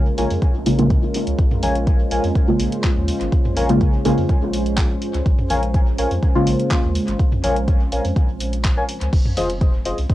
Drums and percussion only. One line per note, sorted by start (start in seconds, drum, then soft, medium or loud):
0.18 open hi-hat medium
0.30 open hi-hat soft
0.42 kick loud
0.42 closed hi-hat soft
0.66 open hi-hat medium
0.79 closed hi-hat soft
0.90 kick loud
0.90 closed hi-hat soft
1.15 open hi-hat medium
1.27 closed hi-hat soft
1.39 kick loud
1.39 closed hi-hat soft
1.51 mid tom medium
1.63 open hi-hat medium
1.63 high tom medium
1.76 closed hi-hat soft
1.87 kick loud
1.87 closed hi-hat soft
2.11 open hi-hat medium
2.24 open hi-hat soft
2.36 kick loud
2.36 closed hi-hat soft
2.60 open hi-hat medium
2.72 closed hi-hat soft
2.84 kick loud
2.84 clap medium
2.84 closed hi-hat soft
3.08 open hi-hat medium
3.21 closed hi-hat soft
3.32 kick loud
3.32 closed hi-hat soft
3.45 mid tom medium
3.57 open hi-hat medium
3.57 high tom medium
3.69 closed hi-hat soft
3.81 kick loud
3.81 closed hi-hat soft
4.05 open hi-hat medium
4.18 open hi-hat soft
4.29 kick loud
4.29 closed hi-hat soft
4.53 open hi-hat medium
4.66 closed hi-hat soft
4.77 kick loud
4.77 clap medium
4.77 closed hi-hat soft
5.02 open hi-hat medium
5.14 closed hi-hat soft
5.26 kick loud
5.26 closed hi-hat soft
5.39 mid tom medium
5.50 open hi-hat medium
5.50 high tom soft
5.63 closed hi-hat soft
5.74 kick loud
5.74 closed hi-hat soft
5.98 open hi-hat medium
6.11 open hi-hat soft
6.23 kick loud
6.23 closed hi-hat soft
6.47 open hi-hat medium
6.59 closed hi-hat soft
6.71 kick loud
6.71 clap medium
6.71 closed hi-hat soft
6.95 open hi-hat medium
7.08 closed hi-hat soft
7.19 kick loud
7.19 closed hi-hat soft
7.32 mid tom medium
7.44 open hi-hat medium
7.44 high tom soft
7.56 closed hi-hat soft
7.68 kick loud
7.68 closed hi-hat soft
7.92 open hi-hat medium
8.05 open hi-hat soft
8.16 kick loud
8.16 closed hi-hat soft
8.16 high tom soft
8.40 open hi-hat medium
8.53 closed hi-hat soft
8.65 kick loud
8.65 clap medium
8.65 closed hi-hat soft
8.89 open hi-hat medium
9.01 closed hi-hat soft
9.13 kick loud
9.13 closed hi-hat soft
9.13 crash medium
9.26 mid tom loud
9.37 open hi-hat medium
9.37 high tom medium
9.50 closed hi-hat soft
9.61 kick loud
9.61 closed hi-hat soft
9.86 open hi-hat medium
9.98 open hi-hat soft
10.10 kick loud
10.10 closed hi-hat soft